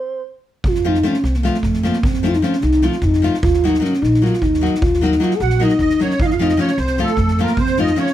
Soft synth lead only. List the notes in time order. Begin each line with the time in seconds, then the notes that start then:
Already playing: C5
0.67 F4
0.87 D#4
1.06 C#4
1.24 C4
1.35 A#3
1.45 A3
1.85 A#3
2.04 C4
2.26 D#4 F4
2.34 D#4
2.42 C#4
2.62 D#4
2.85 F4
2.97 F4
3.04 D#4
3.43 F4
3.65 D#4
3.83 C#4
4.01 D#4
4.22 F4
4.41 D#4
4.81 F4
5.02 D#4
5.21 F4
5.35 A4
5.41 F#4
5.62 D#4
5.81 D#4
6.03 C#4
6.20 F4
6.25 D#4
6.32 F4
6.36 F4
6.40 D#4
6.59 C#4
6.78 C4
7.01 A3
7.41 A#3
7.60 C4
7.78 D#4
7.96 C#4